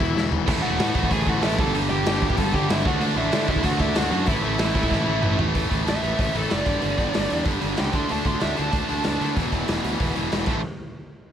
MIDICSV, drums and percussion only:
0, 0, Header, 1, 2, 480
1, 0, Start_track
1, 0, Tempo, 317292
1, 722, Time_signature, 4, 2, 24, 8
1, 17128, End_track
2, 0, Start_track
2, 0, Title_t, "Drums"
2, 5, Note_on_c, 9, 36, 108
2, 156, Note_off_c, 9, 36, 0
2, 262, Note_on_c, 9, 38, 77
2, 413, Note_off_c, 9, 38, 0
2, 482, Note_on_c, 9, 43, 97
2, 633, Note_off_c, 9, 43, 0
2, 722, Note_on_c, 9, 36, 120
2, 724, Note_on_c, 9, 46, 67
2, 724, Note_on_c, 9, 49, 112
2, 873, Note_off_c, 9, 36, 0
2, 875, Note_off_c, 9, 46, 0
2, 875, Note_off_c, 9, 49, 0
2, 1197, Note_on_c, 9, 46, 75
2, 1210, Note_on_c, 9, 38, 124
2, 1348, Note_off_c, 9, 46, 0
2, 1362, Note_off_c, 9, 38, 0
2, 1437, Note_on_c, 9, 36, 104
2, 1560, Note_off_c, 9, 36, 0
2, 1560, Note_on_c, 9, 36, 92
2, 1676, Note_off_c, 9, 36, 0
2, 1676, Note_on_c, 9, 36, 98
2, 1679, Note_on_c, 9, 46, 66
2, 1827, Note_off_c, 9, 36, 0
2, 1831, Note_off_c, 9, 46, 0
2, 1916, Note_on_c, 9, 36, 97
2, 2067, Note_off_c, 9, 36, 0
2, 2146, Note_on_c, 9, 46, 80
2, 2159, Note_on_c, 9, 38, 110
2, 2297, Note_off_c, 9, 46, 0
2, 2311, Note_off_c, 9, 38, 0
2, 2398, Note_on_c, 9, 36, 122
2, 2549, Note_off_c, 9, 36, 0
2, 2642, Note_on_c, 9, 46, 65
2, 2793, Note_off_c, 9, 46, 0
2, 3114, Note_on_c, 9, 46, 67
2, 3128, Note_on_c, 9, 38, 127
2, 3265, Note_off_c, 9, 46, 0
2, 3279, Note_off_c, 9, 38, 0
2, 3359, Note_on_c, 9, 36, 98
2, 3478, Note_off_c, 9, 36, 0
2, 3478, Note_on_c, 9, 36, 102
2, 3587, Note_on_c, 9, 46, 62
2, 3599, Note_off_c, 9, 36, 0
2, 3599, Note_on_c, 9, 36, 112
2, 3738, Note_off_c, 9, 46, 0
2, 3750, Note_off_c, 9, 36, 0
2, 3839, Note_on_c, 9, 36, 98
2, 3990, Note_off_c, 9, 36, 0
2, 4078, Note_on_c, 9, 46, 62
2, 4092, Note_on_c, 9, 38, 127
2, 4229, Note_off_c, 9, 46, 0
2, 4243, Note_off_c, 9, 38, 0
2, 4317, Note_on_c, 9, 36, 113
2, 4468, Note_off_c, 9, 36, 0
2, 4556, Note_on_c, 9, 46, 69
2, 4707, Note_off_c, 9, 46, 0
2, 5024, Note_on_c, 9, 46, 76
2, 5037, Note_on_c, 9, 38, 118
2, 5175, Note_off_c, 9, 46, 0
2, 5188, Note_off_c, 9, 38, 0
2, 5268, Note_on_c, 9, 36, 96
2, 5384, Note_off_c, 9, 36, 0
2, 5384, Note_on_c, 9, 36, 99
2, 5494, Note_on_c, 9, 46, 68
2, 5506, Note_off_c, 9, 36, 0
2, 5506, Note_on_c, 9, 36, 89
2, 5645, Note_off_c, 9, 46, 0
2, 5657, Note_off_c, 9, 36, 0
2, 5745, Note_on_c, 9, 36, 102
2, 5896, Note_off_c, 9, 36, 0
2, 5976, Note_on_c, 9, 46, 69
2, 5990, Note_on_c, 9, 38, 118
2, 6128, Note_off_c, 9, 46, 0
2, 6141, Note_off_c, 9, 38, 0
2, 6447, Note_on_c, 9, 46, 66
2, 6466, Note_on_c, 9, 36, 108
2, 6598, Note_off_c, 9, 46, 0
2, 6618, Note_off_c, 9, 36, 0
2, 6935, Note_on_c, 9, 46, 73
2, 6949, Note_on_c, 9, 38, 119
2, 7086, Note_off_c, 9, 46, 0
2, 7100, Note_off_c, 9, 38, 0
2, 7188, Note_on_c, 9, 36, 97
2, 7307, Note_off_c, 9, 36, 0
2, 7307, Note_on_c, 9, 36, 96
2, 7431, Note_off_c, 9, 36, 0
2, 7431, Note_on_c, 9, 36, 98
2, 7446, Note_on_c, 9, 38, 68
2, 7583, Note_off_c, 9, 36, 0
2, 7598, Note_off_c, 9, 38, 0
2, 7905, Note_on_c, 9, 45, 93
2, 8056, Note_off_c, 9, 45, 0
2, 8152, Note_on_c, 9, 43, 99
2, 8304, Note_off_c, 9, 43, 0
2, 8390, Note_on_c, 9, 46, 75
2, 8398, Note_on_c, 9, 36, 105
2, 8541, Note_off_c, 9, 46, 0
2, 8550, Note_off_c, 9, 36, 0
2, 8640, Note_on_c, 9, 36, 89
2, 8648, Note_on_c, 9, 46, 55
2, 8792, Note_off_c, 9, 36, 0
2, 8799, Note_off_c, 9, 46, 0
2, 8887, Note_on_c, 9, 46, 74
2, 8900, Note_on_c, 9, 38, 105
2, 9038, Note_off_c, 9, 46, 0
2, 9051, Note_off_c, 9, 38, 0
2, 9132, Note_on_c, 9, 46, 62
2, 9284, Note_off_c, 9, 46, 0
2, 9362, Note_on_c, 9, 36, 114
2, 9373, Note_on_c, 9, 46, 80
2, 9513, Note_off_c, 9, 36, 0
2, 9525, Note_off_c, 9, 46, 0
2, 9608, Note_on_c, 9, 46, 62
2, 9759, Note_off_c, 9, 46, 0
2, 9838, Note_on_c, 9, 46, 72
2, 9852, Note_on_c, 9, 38, 107
2, 9989, Note_off_c, 9, 46, 0
2, 10003, Note_off_c, 9, 38, 0
2, 10077, Note_on_c, 9, 36, 103
2, 10081, Note_on_c, 9, 46, 61
2, 10228, Note_off_c, 9, 36, 0
2, 10232, Note_off_c, 9, 46, 0
2, 10315, Note_on_c, 9, 46, 70
2, 10467, Note_off_c, 9, 46, 0
2, 10560, Note_on_c, 9, 36, 81
2, 10564, Note_on_c, 9, 46, 55
2, 10711, Note_off_c, 9, 36, 0
2, 10715, Note_off_c, 9, 46, 0
2, 10801, Note_on_c, 9, 46, 82
2, 10815, Note_on_c, 9, 38, 116
2, 10952, Note_off_c, 9, 46, 0
2, 10966, Note_off_c, 9, 38, 0
2, 11047, Note_on_c, 9, 46, 62
2, 11198, Note_off_c, 9, 46, 0
2, 11271, Note_on_c, 9, 46, 73
2, 11280, Note_on_c, 9, 36, 102
2, 11422, Note_off_c, 9, 46, 0
2, 11431, Note_off_c, 9, 36, 0
2, 11521, Note_on_c, 9, 46, 59
2, 11673, Note_off_c, 9, 46, 0
2, 11752, Note_on_c, 9, 46, 77
2, 11766, Note_on_c, 9, 38, 103
2, 11904, Note_off_c, 9, 46, 0
2, 11917, Note_off_c, 9, 38, 0
2, 11997, Note_on_c, 9, 46, 56
2, 12001, Note_on_c, 9, 36, 102
2, 12149, Note_off_c, 9, 46, 0
2, 12152, Note_off_c, 9, 36, 0
2, 12241, Note_on_c, 9, 46, 76
2, 12392, Note_off_c, 9, 46, 0
2, 12482, Note_on_c, 9, 36, 90
2, 12483, Note_on_c, 9, 46, 53
2, 12633, Note_off_c, 9, 36, 0
2, 12634, Note_off_c, 9, 46, 0
2, 12717, Note_on_c, 9, 46, 70
2, 12730, Note_on_c, 9, 38, 100
2, 12868, Note_off_c, 9, 46, 0
2, 12882, Note_off_c, 9, 38, 0
2, 12957, Note_on_c, 9, 46, 56
2, 13108, Note_off_c, 9, 46, 0
2, 13201, Note_on_c, 9, 46, 75
2, 13205, Note_on_c, 9, 36, 113
2, 13352, Note_off_c, 9, 46, 0
2, 13357, Note_off_c, 9, 36, 0
2, 13446, Note_on_c, 9, 46, 65
2, 13597, Note_off_c, 9, 46, 0
2, 13671, Note_on_c, 9, 46, 75
2, 13684, Note_on_c, 9, 38, 95
2, 13822, Note_off_c, 9, 46, 0
2, 13835, Note_off_c, 9, 38, 0
2, 13935, Note_on_c, 9, 46, 58
2, 14086, Note_off_c, 9, 46, 0
2, 14167, Note_on_c, 9, 36, 103
2, 14168, Note_on_c, 9, 46, 75
2, 14319, Note_off_c, 9, 36, 0
2, 14320, Note_off_c, 9, 46, 0
2, 14403, Note_on_c, 9, 46, 56
2, 14404, Note_on_c, 9, 36, 88
2, 14554, Note_off_c, 9, 46, 0
2, 14555, Note_off_c, 9, 36, 0
2, 14643, Note_on_c, 9, 46, 84
2, 14657, Note_on_c, 9, 38, 110
2, 14795, Note_off_c, 9, 46, 0
2, 14808, Note_off_c, 9, 38, 0
2, 14892, Note_on_c, 9, 46, 64
2, 15043, Note_off_c, 9, 46, 0
2, 15130, Note_on_c, 9, 36, 105
2, 15130, Note_on_c, 9, 46, 75
2, 15281, Note_off_c, 9, 36, 0
2, 15281, Note_off_c, 9, 46, 0
2, 15364, Note_on_c, 9, 46, 59
2, 15516, Note_off_c, 9, 46, 0
2, 15609, Note_on_c, 9, 46, 71
2, 15623, Note_on_c, 9, 38, 105
2, 15760, Note_off_c, 9, 46, 0
2, 15774, Note_off_c, 9, 38, 0
2, 15824, Note_on_c, 9, 57, 81
2, 15838, Note_on_c, 9, 36, 101
2, 15975, Note_off_c, 9, 57, 0
2, 15989, Note_off_c, 9, 36, 0
2, 17128, End_track
0, 0, End_of_file